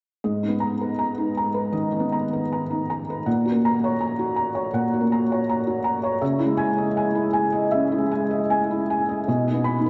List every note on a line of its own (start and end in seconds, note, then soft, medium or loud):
0.24 1.72 G#2 soft
0.24 0.55 D#5 soft
0.43 0.74 D#4 soft
0.48 0.90 B3 soft
0.60 0.92 A#5 medium
0.81 1.12 B4 soft
0.99 1.30 A#5 soft
1.18 1.49 D#4 soft
1.37 1.68 A#5 soft
1.54 1.86 B4 soft
1.72 2.14 D#3 soft
1.72 2.04 D#5 soft
1.92 2.23 D#4 soft
1.99 2.40 B3 soft
2.12 2.43 A#5 soft
2.33 2.63 B4 soft
2.52 2.82 A#5 soft
2.71 3.00 D#4 soft
2.90 3.19 A#5 soft
3.10 3.27 B4 soft
3.26 4.70 A#2 medium
3.26 3.56 F#5 soft
3.45 3.75 F#4 soft
3.52 3.91 A#3 soft
3.65 3.94 A#5 medium
3.84 4.13 C#5 medium
4.01 4.30 A#5 soft
4.19 4.49 F#4 soft
4.36 4.66 A#5 soft
4.55 4.85 C#5 soft
4.73 6.17 A#2 medium
4.73 5.04 F#5 medium
4.94 5.22 F#4 soft
5.01 5.39 A#3 soft
5.12 5.41 A#5 soft
5.32 5.60 C#5 soft
5.49 5.78 A#5 medium
5.67 5.96 F#4 soft
5.84 6.14 A#5 medium
6.03 6.22 C#5 medium
6.21 7.67 C#3 medium
6.21 6.51 E5 soft
6.39 6.69 E4 medium
6.46 6.86 G#3 soft
6.57 6.88 G#5 medium
6.78 7.07 D#5 medium
6.97 7.26 G#5 medium
7.15 7.45 E4 medium
7.33 7.63 G#5 medium
7.52 7.82 D#5 medium
7.71 8.12 C#4 soft
7.71 8.01 E5 medium
7.92 8.21 E4 soft
7.98 8.38 G#3 soft
8.11 8.41 G#5 medium
8.31 8.61 D#5 soft
8.50 8.80 G#5 medium
8.71 9.01 E4 soft
8.90 9.20 G#5 medium
9.09 9.27 D#5 soft
9.28 9.90 B2 medium
9.28 9.60 D#5 medium
9.47 9.77 D#4 soft
9.54 9.90 B3 soft
9.64 9.90 B5 medium
9.78 9.90 D#4 soft
9.86 9.90 B4 soft